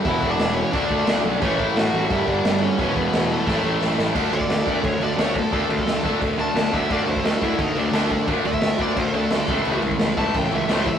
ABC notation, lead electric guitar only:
X:1
M:4/4
L:1/16
Q:1/4=175
K:Dlyd
V:1 name="Lead electric guitar"
[Ee]3 [Dd]3 [Cc]2 [Dd]6 z2 | [Cc]2 [Ee]2 [Ff]4 [Ee]2 [Dd]4 [Cc]2- | [Cc]2 [B,B]4 [A,A]8 z2 | z2 d6 c2 d2 c2 A2 |
A8 z2 a4 e2 | d2 =c2 A2 E2 ^D2 =D2 D4 | z2 e4 d2 =c2 A6- | A2 z4 a2 =g2 e2 =c2 e2 |]